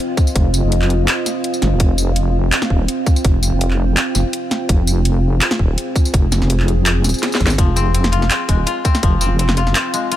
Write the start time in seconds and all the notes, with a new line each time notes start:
Already playing: C4 F4 D#5
0.17 kick, closed hi-hat, tambourine
0.27 tambourine
0.36 F1, kick, closed hi-hat
0.54 closed hi-hat, tambourine
0.63 F1
0.72 closed hi-hat
0.82 clap
0.90 closed hi-hat
1.08 clap, closed hi-hat
1.26 snare, closed hi-hat, tambourine
1.44 closed hi-hat
1.54 tambourine
1.62 G1, snare, closed hi-hat
1.72 D#1
1.80 F1 G5, kick, closed hi-hat
1.98 tambourine
2.16 closed hi-hat
2.52 clap, closed hi-hat
2.62 snare
2.70 D#1, kick
2.88 closed hi-hat
3.06 kick, closed hi-hat, tambourine
3.16 tambourine
3.25 F1, kick, closed hi-hat
3.43 tambourine
3.53 F1
3.61 closed hi-hat
3.71 clap
3.97 clap, closed hi-hat
4.15 F1, snare, tambourine
4.33 closed hi-hat
4.51 snare, closed hi-hat
4.69 F1 G#4, kick, closed hi-hat
4.87 tambourine
5.05 closed hi-hat
5.41 clap, closed hi-hat
5.51 snare
5.59 D#1, kick
5.78 closed hi-hat
5.96 kick, closed hi-hat, tambourine
6.05 tambourine
6.14 F1, kick, closed hi-hat
6.32 snare, closed hi-hat, tambourine
6.42 F1, snare
6.50 closed hi-hat
6.60 clap
6.68 closed hi-hat
6.86 clap, closed hi-hat
7.04 D#1, snare, closed hi-hat, tambourine
7.09 tambourine
7.14 tambourine
7.18 tambourine
7.23 snare, closed hi-hat
7.32 snare, tambourine
7.40 G#1, kick, closed hi-hat
7.46 snare, tambourine
7.58 F1 F3 C4 F4 F5, kick, closed hi-hat
7.76 C4, tambourine
7.94 C4, closed hi-hat
8.04 snare
8.12 F4, closed hi-hat
8.22 snare
8.30 C4, clap, closed hi-hat
8.49 D#1 G#3, kick, closed hi-hat
8.66 F4, closed hi-hat
8.85 C4, kick, closed hi-hat, tambourine
8.95 snare, tambourine
9.03 F1 F3, kick, closed hi-hat
9.21 C4, tambourine
9.31 F1
9.39 C4, closed hi-hat
9.49 clap, snare
9.57 F4, closed hi-hat
9.67 snare
9.75 C4, clap, closed hi-hat
9.94 G#3, closed hi-hat, tambourine
10.12 F4, closed hi-hat